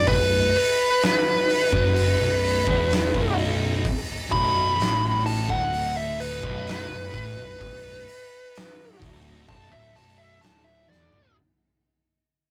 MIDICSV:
0, 0, Header, 1, 5, 480
1, 0, Start_track
1, 0, Key_signature, 2, "minor"
1, 0, Tempo, 940439
1, 41, Time_signature, 4, 2, 24, 8
1, 6383, End_track
2, 0, Start_track
2, 0, Title_t, "Lead electric guitar"
2, 0, Program_c, 0, 29
2, 41, Note_on_c, 0, 71, 89
2, 275, Note_off_c, 0, 71, 0
2, 290, Note_on_c, 0, 71, 96
2, 1709, Note_off_c, 0, 71, 0
2, 2204, Note_on_c, 0, 83, 116
2, 2670, Note_off_c, 0, 83, 0
2, 2684, Note_on_c, 0, 81, 102
2, 2801, Note_off_c, 0, 81, 0
2, 2807, Note_on_c, 0, 78, 89
2, 3039, Note_off_c, 0, 78, 0
2, 3046, Note_on_c, 0, 76, 89
2, 3162, Note_off_c, 0, 76, 0
2, 3165, Note_on_c, 0, 71, 115
2, 4582, Note_off_c, 0, 71, 0
2, 4843, Note_on_c, 0, 81, 105
2, 4959, Note_off_c, 0, 81, 0
2, 4959, Note_on_c, 0, 76, 102
2, 5076, Note_off_c, 0, 76, 0
2, 5081, Note_on_c, 0, 81, 92
2, 5195, Note_on_c, 0, 76, 86
2, 5197, Note_off_c, 0, 81, 0
2, 5314, Note_off_c, 0, 76, 0
2, 5314, Note_on_c, 0, 81, 91
2, 5432, Note_on_c, 0, 76, 91
2, 5433, Note_off_c, 0, 81, 0
2, 5552, Note_off_c, 0, 76, 0
2, 5561, Note_on_c, 0, 74, 114
2, 5792, Note_off_c, 0, 74, 0
2, 6383, End_track
3, 0, Start_track
3, 0, Title_t, "Distorted electric guitar"
3, 0, Program_c, 1, 30
3, 40, Note_on_c, 1, 35, 70
3, 233, Note_off_c, 1, 35, 0
3, 881, Note_on_c, 1, 42, 101
3, 1116, Note_off_c, 1, 42, 0
3, 1122, Note_on_c, 1, 35, 77
3, 1316, Note_off_c, 1, 35, 0
3, 1362, Note_on_c, 1, 40, 98
3, 1597, Note_off_c, 1, 40, 0
3, 1603, Note_on_c, 1, 35, 101
3, 1957, Note_off_c, 1, 35, 0
3, 2195, Note_on_c, 1, 35, 95
3, 2433, Note_off_c, 1, 35, 0
3, 2435, Note_on_c, 1, 45, 108
3, 2791, Note_off_c, 1, 45, 0
3, 2793, Note_on_c, 1, 38, 99
3, 3269, Note_off_c, 1, 38, 0
3, 3271, Note_on_c, 1, 35, 106
3, 3507, Note_off_c, 1, 35, 0
3, 3513, Note_on_c, 1, 35, 83
3, 3627, Note_off_c, 1, 35, 0
3, 3629, Note_on_c, 1, 45, 104
3, 3750, Note_off_c, 1, 45, 0
3, 3757, Note_on_c, 1, 35, 70
3, 3865, Note_off_c, 1, 35, 0
3, 3871, Note_on_c, 1, 35, 69
3, 4069, Note_off_c, 1, 35, 0
3, 4592, Note_on_c, 1, 38, 100
3, 4830, Note_off_c, 1, 38, 0
3, 4833, Note_on_c, 1, 35, 100
3, 4950, Note_off_c, 1, 35, 0
3, 4956, Note_on_c, 1, 38, 107
3, 5071, Note_off_c, 1, 38, 0
3, 5078, Note_on_c, 1, 35, 106
3, 5306, Note_off_c, 1, 35, 0
3, 5308, Note_on_c, 1, 38, 116
3, 5547, Note_off_c, 1, 38, 0
3, 5554, Note_on_c, 1, 40, 95
3, 5670, Note_off_c, 1, 40, 0
3, 5676, Note_on_c, 1, 38, 100
3, 5790, Note_off_c, 1, 38, 0
3, 6383, End_track
4, 0, Start_track
4, 0, Title_t, "Fingered electric bass"
4, 0, Program_c, 2, 33
4, 40, Note_on_c, 2, 23, 78
4, 264, Note_off_c, 2, 23, 0
4, 880, Note_on_c, 2, 30, 102
4, 1105, Note_off_c, 2, 30, 0
4, 1119, Note_on_c, 2, 23, 76
4, 1345, Note_off_c, 2, 23, 0
4, 1363, Note_on_c, 2, 28, 101
4, 1588, Note_off_c, 2, 28, 0
4, 1605, Note_on_c, 2, 23, 109
4, 1945, Note_off_c, 2, 23, 0
4, 2207, Note_on_c, 2, 23, 108
4, 2430, Note_off_c, 2, 23, 0
4, 2448, Note_on_c, 2, 33, 107
4, 2786, Note_off_c, 2, 33, 0
4, 2804, Note_on_c, 2, 26, 93
4, 3264, Note_off_c, 2, 26, 0
4, 3284, Note_on_c, 2, 23, 104
4, 3507, Note_off_c, 2, 23, 0
4, 3523, Note_on_c, 2, 23, 86
4, 3635, Note_off_c, 2, 23, 0
4, 3644, Note_on_c, 2, 33, 109
4, 3755, Note_off_c, 2, 33, 0
4, 3763, Note_on_c, 2, 23, 89
4, 3875, Note_off_c, 2, 23, 0
4, 3884, Note_on_c, 2, 23, 79
4, 4107, Note_off_c, 2, 23, 0
4, 4602, Note_on_c, 2, 26, 97
4, 4825, Note_off_c, 2, 26, 0
4, 4843, Note_on_c, 2, 23, 102
4, 4954, Note_off_c, 2, 23, 0
4, 4961, Note_on_c, 2, 26, 92
4, 5072, Note_off_c, 2, 26, 0
4, 5086, Note_on_c, 2, 23, 89
4, 5306, Note_off_c, 2, 23, 0
4, 5324, Note_on_c, 2, 26, 88
4, 5545, Note_off_c, 2, 26, 0
4, 5563, Note_on_c, 2, 28, 96
4, 5673, Note_off_c, 2, 28, 0
4, 5682, Note_on_c, 2, 26, 99
4, 5792, Note_off_c, 2, 26, 0
4, 6383, End_track
5, 0, Start_track
5, 0, Title_t, "Drums"
5, 36, Note_on_c, 9, 46, 94
5, 38, Note_on_c, 9, 36, 114
5, 87, Note_off_c, 9, 46, 0
5, 89, Note_off_c, 9, 36, 0
5, 278, Note_on_c, 9, 46, 73
5, 329, Note_off_c, 9, 46, 0
5, 516, Note_on_c, 9, 46, 92
5, 529, Note_on_c, 9, 38, 112
5, 568, Note_off_c, 9, 46, 0
5, 580, Note_off_c, 9, 38, 0
5, 761, Note_on_c, 9, 46, 72
5, 812, Note_off_c, 9, 46, 0
5, 881, Note_on_c, 9, 36, 109
5, 932, Note_off_c, 9, 36, 0
5, 1001, Note_on_c, 9, 46, 92
5, 1052, Note_off_c, 9, 46, 0
5, 1243, Note_on_c, 9, 46, 75
5, 1294, Note_off_c, 9, 46, 0
5, 1362, Note_on_c, 9, 36, 117
5, 1413, Note_off_c, 9, 36, 0
5, 1484, Note_on_c, 9, 46, 97
5, 1496, Note_on_c, 9, 38, 127
5, 1535, Note_off_c, 9, 46, 0
5, 1547, Note_off_c, 9, 38, 0
5, 1605, Note_on_c, 9, 36, 117
5, 1656, Note_off_c, 9, 36, 0
5, 1727, Note_on_c, 9, 46, 70
5, 1778, Note_off_c, 9, 46, 0
5, 1965, Note_on_c, 9, 36, 122
5, 1968, Note_on_c, 9, 46, 97
5, 2016, Note_off_c, 9, 36, 0
5, 2019, Note_off_c, 9, 46, 0
5, 2206, Note_on_c, 9, 36, 107
5, 2212, Note_on_c, 9, 46, 67
5, 2257, Note_off_c, 9, 36, 0
5, 2263, Note_off_c, 9, 46, 0
5, 2448, Note_on_c, 9, 46, 91
5, 2461, Note_on_c, 9, 38, 114
5, 2499, Note_off_c, 9, 46, 0
5, 2512, Note_off_c, 9, 38, 0
5, 2686, Note_on_c, 9, 46, 63
5, 2737, Note_off_c, 9, 46, 0
5, 2804, Note_on_c, 9, 36, 97
5, 2855, Note_off_c, 9, 36, 0
5, 2923, Note_on_c, 9, 46, 82
5, 2974, Note_off_c, 9, 46, 0
5, 3165, Note_on_c, 9, 46, 69
5, 3216, Note_off_c, 9, 46, 0
5, 3284, Note_on_c, 9, 36, 123
5, 3335, Note_off_c, 9, 36, 0
5, 3405, Note_on_c, 9, 46, 101
5, 3417, Note_on_c, 9, 38, 126
5, 3456, Note_off_c, 9, 46, 0
5, 3468, Note_off_c, 9, 38, 0
5, 3644, Note_on_c, 9, 36, 112
5, 3644, Note_on_c, 9, 46, 63
5, 3695, Note_off_c, 9, 36, 0
5, 3695, Note_off_c, 9, 46, 0
5, 3884, Note_on_c, 9, 36, 99
5, 3885, Note_on_c, 9, 46, 91
5, 3935, Note_off_c, 9, 36, 0
5, 3936, Note_off_c, 9, 46, 0
5, 4124, Note_on_c, 9, 46, 63
5, 4175, Note_off_c, 9, 46, 0
5, 4365, Note_on_c, 9, 46, 95
5, 4377, Note_on_c, 9, 38, 127
5, 4416, Note_off_c, 9, 46, 0
5, 4428, Note_off_c, 9, 38, 0
5, 4603, Note_on_c, 9, 36, 114
5, 4604, Note_on_c, 9, 46, 66
5, 4654, Note_off_c, 9, 36, 0
5, 4655, Note_off_c, 9, 46, 0
5, 4842, Note_on_c, 9, 36, 120
5, 4844, Note_on_c, 9, 46, 87
5, 4893, Note_off_c, 9, 36, 0
5, 4895, Note_off_c, 9, 46, 0
5, 5080, Note_on_c, 9, 46, 70
5, 5131, Note_off_c, 9, 46, 0
5, 5320, Note_on_c, 9, 46, 101
5, 5332, Note_on_c, 9, 38, 127
5, 5371, Note_off_c, 9, 46, 0
5, 5383, Note_off_c, 9, 38, 0
5, 5572, Note_on_c, 9, 38, 74
5, 5623, Note_off_c, 9, 38, 0
5, 5678, Note_on_c, 9, 43, 92
5, 5729, Note_off_c, 9, 43, 0
5, 6383, End_track
0, 0, End_of_file